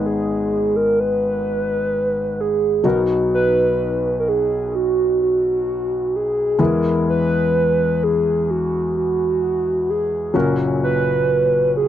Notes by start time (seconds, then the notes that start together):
Already playing: G#1 G#2 G#3 B3 D#4 G#4
0.06 G#4
0.76 A#4
0.99 B4
2.40 G#4
2.84 B1 B2 F#3 B3 D#4 F#4 A#4
3.34 B4
4.20 A#4
4.28 G#4
4.75 F#4
5.22 F#4
6.16 G#4
6.59 E2 E3 G#3 B3 E4 G#4
6.63 A#4
7.09 B4
8.04 G#4
8.50 F#4
8.97 F#4
9.90 G#4
10.34 F#1 F#2 A#2 F#3 C#4 F#4 A#4
10.84 B4
11.77 G#4